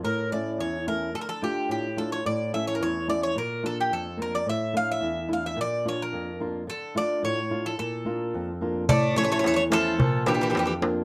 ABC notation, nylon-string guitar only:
X:1
M:2/4
L:1/8
Q:1/4=108
K:none
V:1 name="Nylon-string guitar"
A,, [A,^CE] E,, [A,CE] | D, [A,DF] A,, [A,DF] | A,, [A,^CE] E,, [A,CE] | _B,, [_B,DF] F,, [B,DF] |
A,, [A,DE] E,, [A,DE] | _B,, [_B,DF] F,, [B,DF] | D, [A,DF] A,, [A,DF] | _B,, [_B,DF] F,, [B,DF] |
A,, [A,^CE] E,, [A,CE] | _B,, [_B,DF] F,, [B,DF] |]